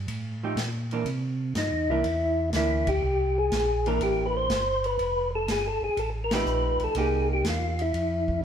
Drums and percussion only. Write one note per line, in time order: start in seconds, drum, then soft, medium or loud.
0.08 ride medium
0.57 snare medium
0.57 hi-hat pedal medium
0.57 ride medium
0.91 ride soft
1.06 ride medium
1.55 snare medium
1.55 hi-hat pedal medium
1.55 ride medium
2.04 ride medium
2.53 snare medium
2.53 hi-hat pedal medium
2.53 ride medium
2.87 kick medium
2.87 ride medium
3.52 snare medium
3.52 hi-hat pedal medium
3.52 ride medium
3.86 ride soft
4.01 ride medium
4.50 snare medium
4.50 hi-hat pedal medium
4.50 ride medium
4.84 ride soft
4.99 ride medium
5.48 snare medium
5.48 hi-hat pedal medium
5.48 ride medium
5.97 ride medium
6.31 snare medium
6.31 ride medium
6.46 hi-hat pedal medium
6.79 ride soft
6.95 ride medium
7.44 snare medium
7.44 hi-hat pedal medium
7.44 ride medium
7.79 ride soft
7.94 ride medium
8.28 kick medium